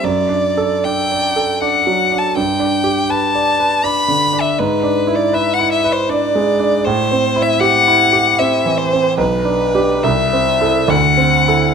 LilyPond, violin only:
\new Staff \with { instrumentName = "Violin" } { \time 3/4 \key g \major \tempo 4 = 79 d''4 g''4 fis''8. a''16 | g''4 a''4 b''8. e''16 | b'8. d''16 e''16 fis''16 e''16 c''16 d''4 | c''8. e''16 fis''4 e''8 c''8 |
b'4 e''4 fis''4 | }